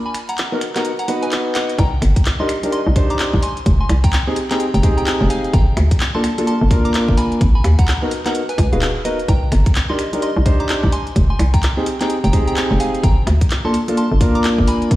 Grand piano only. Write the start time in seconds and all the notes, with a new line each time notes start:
0.52 B3 D#4 F#4 A#4
0.76 B3 D#4 F#4 A#4
1.08 B3 D#4 F#4 B4
2.40 D4 D#4 G4 A#4
2.63 D4 D#4 G4 A#4
2.96 D4 D#4 G4 C5
4.27 C4 D#4 G4 G#4
4.51 C4 D#4 G4 G#4
4.83 C4 D#4 G4 G#4
6.15 A#3 D4 F4 A4
6.38 A#3 D4 F4 A4
6.71 A#3 D4 F4 A#4
8.02 B3 D#4 F#4 A#4
8.26 B3 D#4 F#4 A#4
8.72 B3 D#4 F#4 B4
9.05 B3 D#4 F#4 A#4
9.89 D4 D#4 G4 A#4
10.13 D4 D#4 G4 A#4
10.46 D4 D#4 G4 C5
11.77 C4 D#4 G4 G#4
12.01 C4 D#4 G4 G#4
12.33 C4 D#4 G4 G#4
13.65 A#3 D4 F4 A4
13.88 A#3 D4 F4 A4
14.21 A#3 D4 F4 A#4